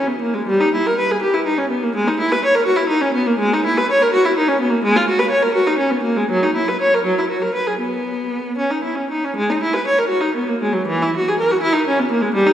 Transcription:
0.08 0.21 B3 medium
0.22 0.34 A#3 medium
0.34 0.47 G#3 medium
0.47 0.60 G3 medium
0.61 0.73 D#4 medium
0.75 0.86 E4 medium
0.87 0.98 A#4 medium
0.99 1.10 B4 medium
1.11 1.22 G#4 medium
1.22 1.33 G4 medium
1.33 1.46 E4 medium
1.46 1.58 D#4 medium
1.58 1.70 C#4 medium
1.70 1.82 B3 medium
1.83 1.95 A#3 medium
1.96 2.07 G#3 medium
2.08 2.19 D#4 medium
2.20 2.31 E4 medium
2.32 2.43 B4 medium
2.45 2.55 C#5 medium
2.55 2.66 A#4 medium
2.66 2.78 F#4 medium
2.77 2.89 E4 medium
2.89 3.02 D#4 medium
3.01 3.15 C#4 medium
3.14 3.27 B3 medium
3.27 3.40 A#3 medium
3.39 3.52 G#3 medium
3.53 3.66 D#4 medium
3.65 3.78 E4 medium
3.78 3.90 B4 medium
3.91 4.02 C#5 medium
4.02 4.14 A#4 medium
4.13 4.25 F#4 medium
4.25 4.37 E4 medium
4.37 4.49 D#4 medium
4.48 4.60 C#4 medium
4.61 4.72 B3 medium
4.70 4.83 A#3 medium
4.84 4.96 G#3 medium
4.96 5.08 F4 medium
5.08 5.20 F#4 medium
5.19 5.31 B4 medium
5.30 5.42 C#5 medium
5.42 5.55 A#4 medium
5.55 5.67 F#4 medium
5.67 5.79 D#4 medium
5.78 5.91 C#4 medium
5.90 6.03 B3 medium
6.03 6.16 A#3 medium
6.17 6.30 G#3 medium
6.30 6.42 F#3 medium
6.43 6.55 D#4 medium
6.56 6.68 E4 medium
6.68 6.80 B4 medium
6.81 6.93 C#5 medium
6.94 7.06 A#4 medium
7.05 7.17 F#3 medium
7.19 7.31 E4 medium
7.30 7.42 F#4 medium
7.42 7.55 A#4 medium
7.54 7.67 B4 medium
7.67 7.80 G#4 medium
7.79 8.55 B3 medium
8.58 8.71 C#4 medium
8.70 8.84 D#4 medium
8.84 8.97 E4 medium
8.95 9.10 C#4 medium
9.10 9.23 D#4 medium
9.24 9.37 C#4 medium
9.36 9.48 G#3 medium
9.50 9.61 D#4 medium
9.63 9.74 E4 medium
9.74 9.86 B4 medium
9.87 9.98 C#5 medium
9.98 10.10 A#4 medium
10.08 10.21 F#4 medium
10.21 10.34 D#4 medium
10.35 10.47 B3 medium
10.49 10.61 A#3 medium
10.62 10.74 G#3 medium
10.73 10.86 F#3 medium
10.88 11.00 E3 medium
11.02 11.13 E4 medium
11.17 11.27 F#4 medium
11.28 11.39 G#4 medium
11.39 11.50 A#4 medium
11.51 11.62 F#4 medium
11.63 11.73 E4 medium
11.73 11.85 D#4 medium
11.88 11.97 C#4 medium
11.99 12.09 B3 medium
12.11 12.21 A#3 medium
12.22 12.32 G#3 medium
12.35 12.45 G3 medium
12.47 12.53 D#4 medium

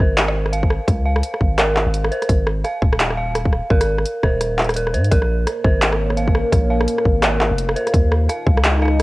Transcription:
0.00 0.79 G#1 loud
0.00 1.58 A#4 loud
0.00 0.17 C5 medium
0.18 clap loud
0.18 closed hi-hat medium
0.28 cross-stick medium
0.46 cross-stick soft
0.52 1.04 F5 medium
0.52 closed hi-hat medium
0.63 kick medium
0.70 cross-stick medium
0.88 1.22 C#2 loud
0.88 kick loud
0.88 cross-stick soft
0.88 closed hi-hat medium
1.05 1.22 F5 medium
1.16 cross-stick medium
1.23 closed hi-hat medium
1.34 cross-stick soft
1.41 1.85 G#1 loud
1.41 kick medium
1.58 2.10 A#4 loud
1.58 cross-stick medium
1.58 clap loud
1.58 closed hi-hat medium
1.76 cross-stick soft
1.76 clap medium
1.86 2.10 G#1 medium
1.94 closed hi-hat medium
2.04 cross-stick medium
2.11 2.28 C5 medium
2.11 closed hi-hat soft
2.22 cross-stick soft
2.22 closed hi-hat soft
2.29 2.64 G#1 loud
2.29 kick loud
2.29 closed hi-hat medium
2.47 cross-stick medium
2.64 3.16 F5 medium
2.64 cross-stick soft
2.64 closed hi-hat medium
2.82 3.62 D#1 loud
2.82 kick medium
2.93 cross-stick medium
3.00 clap loud
3.00 closed hi-hat medium
3.11 cross-stick medium
3.17 3.34 F5 medium
3.35 cross-stick medium
3.35 closed hi-hat medium
3.46 kick medium
3.53 cross-stick medium
3.70 4.05 G#1 loud
3.70 4.22 A#4 loud
3.70 kick loud
3.81 cross-stick medium
3.81 closed hi-hat medium
3.98 cross-stick medium
4.06 closed hi-hat medium
4.23 4.95 D#1 loud
4.23 4.40 C5 medium
4.23 kick medium
4.23 cross-stick medium
4.41 cross-stick medium
4.41 closed hi-hat medium
4.59 clap medium
4.59 closed hi-hat soft
4.62 closed hi-hat soft
4.64 closed hi-hat soft
4.69 cross-stick medium
4.69 closed hi-hat soft
4.74 4.93 A#4 medium
4.74 closed hi-hat soft
4.76 closed hi-hat medium
4.87 cross-stick medium
4.94 5.10 G#2 medium
4.94 5.10 C5 medium
4.94 closed hi-hat soft
5.04 closed hi-hat soft
5.11 5.46 A#1 loud
5.11 8.66 A#3 medium
5.11 5.63 A#4 loud
5.11 kick loud
5.11 closed hi-hat medium
5.20 8.98 A#4 medium
5.20 cross-stick medium
5.34 9.03 C#5 medium
5.47 cross-stick medium
5.47 closed hi-hat medium
5.59 9.03 F5 medium
5.64 6.44 G#1 loud
5.64 5.81 C5 medium
5.64 kick loud
5.64 cross-stick medium
5.82 clap loud
5.82 closed hi-hat medium
5.92 cross-stick medium
6.10 cross-stick soft
6.17 6.69 F5 medium
6.17 closed hi-hat medium
6.28 kick medium
6.35 cross-stick medium
6.52 6.87 A#1 loud
6.52 kick loud
6.52 cross-stick medium
6.52 closed hi-hat medium
6.70 6.87 F5 medium
6.81 cross-stick medium
6.88 closed hi-hat medium
6.98 cross-stick soft
7.05 7.50 G#1 loud
7.05 kick medium
7.23 7.75 A#4 loud
7.23 cross-stick medium
7.23 clap loud
7.23 closed hi-hat medium
7.41 cross-stick soft
7.41 clap medium
7.51 7.75 F1 medium
7.58 closed hi-hat medium
7.69 cross-stick medium
7.76 7.93 C5 medium
7.76 closed hi-hat soft
7.87 cross-stick medium
7.87 closed hi-hat soft
7.94 8.28 D#2 loud
7.94 9.03 D#4 medium
7.94 kick loud
7.94 closed hi-hat medium
8.06 9.03 D#5 medium
8.12 cross-stick medium
8.25 8.81 F5 medium
8.25 9.03 A#5 medium
8.25 cross-stick soft
8.25 closed hi-hat medium
8.47 9.03 C#2 loud
8.47 kick loud
8.57 cross-stick medium
8.64 clap loud
8.64 closed hi-hat medium
8.75 cross-stick soft
8.80 cross-stick soft
8.82 8.99 F5 medium
8.82 cross-stick soft
8.85 cross-stick soft
8.88 cross-stick soft

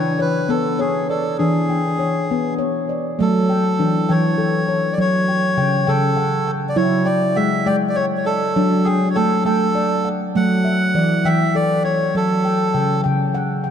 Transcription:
0.00 0.36 E3 medium
0.00 0.20 D4 medium
0.00 0.21 C#5 medium
0.00 0.80 G5 medium
0.19 0.51 B4 medium
0.19 0.78 C#5 medium
0.49 1.25 B3 medium
0.49 0.80 A4 medium
0.79 1.08 G#4 medium
0.79 1.39 C#5 medium
1.09 1.37 A4 medium
1.09 1.99 D5 medium
1.38 2.16 E3 medium
1.38 1.99 D4 medium
1.38 2.54 G#4 medium
1.70 2.59 G5 medium
1.99 2.57 C#5 medium
2.31 3.06 B3 medium
2.59 3.19 C#5 medium
2.89 3.49 D5 medium
3.19 3.71 F#3 medium
3.19 3.79 A3 medium
3.19 4.12 A4 medium
3.49 4.08 G5 medium
3.79 4.05 E3 medium
3.79 4.69 D4 medium
4.09 4.85 E3 medium
4.09 4.95 C#5 medium
4.09 4.68 G5 medium
4.38 5.28 A4 medium
4.69 5.28 C#5 medium
4.93 4.99 D5 medium
4.98 5.58 F#3 medium
4.98 5.92 C#5 medium
5.28 5.57 G5 medium
5.58 5.83 C#3 medium
5.58 5.86 G5 medium
5.87 6.64 C#3 medium
5.87 6.51 A4 medium
5.87 6.46 G5 medium
6.17 7.07 F#5 medium
6.47 7.04 G5 medium
6.69 6.77 D5 medium
6.76 7.28 F#3 medium
6.76 7.36 E4 medium
6.76 7.08 C#5 medium
7.05 7.37 D5 medium
7.05 7.65 G5 medium
7.36 7.62 G#3 medium
7.36 7.67 E5 medium
7.36 8.26 F#5 medium
7.66 8.43 G#3 medium
7.66 7.76 D5 medium
7.66 8.26 G5 medium
7.89 7.96 D5 medium
7.95 8.06 C#5 medium
7.95 8.86 C#5 medium
8.17 8.25 C#5 medium
8.25 8.87 A4 medium
8.25 8.86 D5 medium
8.56 9.07 F#3 loud
8.56 9.16 D4 medium
8.85 9.09 G#4 medium
8.85 9.15 G5 medium
9.10 9.16 C#5 medium
9.15 9.42 A3 medium
9.15 9.44 A4 medium
9.15 9.45 G5 medium
9.45 10.22 A3 medium
9.45 10.09 A4 medium
9.45 10.06 G5 medium
9.75 10.65 D5 medium
10.05 10.65 F#5 medium
10.35 10.86 F#3 medium
10.35 10.95 A3 medium
10.35 11.28 F#5 loud
10.65 11.55 E5 medium
10.95 11.20 E3 medium
10.95 11.85 D5 medium
11.25 12.02 E3 medium
11.25 11.56 E5 medium
11.25 11.85 G5 medium
11.55 12.45 A4 medium
11.55 11.83 D5 medium
11.84 12.15 C#5 medium
11.84 12.45 C#5 medium
12.15 12.75 F#3 medium
12.15 13.01 A4 medium
12.45 12.73 G5 medium
12.74 13.00 C#3 medium
12.74 13.03 G5 medium
13.04 13.71 C#3 medium
13.04 13.63 G5 medium
13.34 13.71 F#5 medium
13.64 13.71 G5 medium

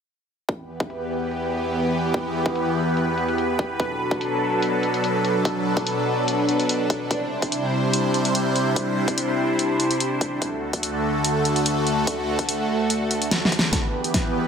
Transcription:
0.49 3.76 E2 medium
0.49 3.76 E3 medium
0.49 3.76 B3 medium
0.49 3.76 G4 medium
0.49 7.07 B4 medium
0.49 kick loud
0.80 kick medium
0.80 closed hi-hat soft
0.90 closed hi-hat medium
1.31 closed hi-hat medium
1.52 closed hi-hat soft
1.63 closed hi-hat soft
1.73 closed hi-hat medium
1.93 closed hi-hat soft
2.14 kick loud
2.14 closed hi-hat medium
2.46 kick loud
2.46 closed hi-hat soft
2.55 closed hi-hat medium
2.97 closed hi-hat medium
3.18 closed hi-hat soft
3.29 closed hi-hat soft
3.38 closed hi-hat medium
3.59 kick loud
3.59 closed hi-hat soft
3.80 7.07 B2 medium
3.80 7.07 F#3 medium
3.80 10.38 D4 medium
3.80 7.07 A4 medium
3.80 kick loud
3.80 closed hi-hat medium
4.11 kick loud
4.11 closed hi-hat soft
4.21 closed hi-hat medium
4.62 closed hi-hat medium
4.83 closed hi-hat soft
4.94 closed hi-hat soft
5.04 closed hi-hat medium
5.25 closed hi-hat soft
5.45 kick loud
5.45 closed hi-hat medium
5.77 kick loud
5.77 closed hi-hat soft
5.87 closed hi-hat medium
6.28 closed hi-hat medium
6.49 closed hi-hat soft
6.60 closed hi-hat soft
6.69 closed hi-hat medium
6.90 kick loud
6.90 closed hi-hat soft
7.11 10.38 C3 medium
7.11 10.38 G3 medium
7.11 10.38 E4 medium
7.11 10.38 C5 medium
7.11 kick loud
7.11 closed hi-hat medium
7.42 kick loud
7.42 closed hi-hat soft
7.52 closed hi-hat medium
7.93 closed hi-hat medium
8.14 closed hi-hat soft
8.25 closed hi-hat soft
8.35 closed hi-hat medium
8.56 closed hi-hat soft
8.76 kick loud
8.76 closed hi-hat medium
9.08 kick medium
9.08 closed hi-hat soft
9.18 closed hi-hat medium
9.59 closed hi-hat medium
9.80 closed hi-hat soft
9.91 closed hi-hat soft
10.00 closed hi-hat medium
10.21 kick medium
10.21 closed hi-hat soft
10.42 13.69 D2 medium
10.42 13.69 D3 medium
10.42 13.69 A3 medium
10.42 13.69 F#4 medium
10.42 13.69 A4 medium
10.42 kick loud
10.42 closed hi-hat medium
10.73 kick medium
10.73 closed hi-hat soft
10.83 closed hi-hat medium
11.24 closed hi-hat medium
11.45 closed hi-hat soft
11.56 closed hi-hat soft
11.66 closed hi-hat medium
11.87 closed hi-hat soft
12.07 kick loud
12.07 closed hi-hat medium
12.39 kick medium
12.39 closed hi-hat soft
12.49 closed hi-hat medium
12.90 closed hi-hat medium
13.11 closed hi-hat soft
13.22 closed hi-hat soft
13.31 snare medium
13.31 closed hi-hat medium
13.45 snare medium
13.52 kick medium
13.52 closed hi-hat soft
13.59 snare medium
13.73 14.48 E2 medium
13.73 14.48 E3 medium
13.73 14.48 B3 medium
13.73 14.48 G4 medium
13.73 14.48 B4 medium
13.73 kick medium
13.73 snare soft
13.73 closed hi-hat medium
14.04 closed hi-hat medium
14.14 kick medium
14.14 snare soft
14.14 closed hi-hat medium

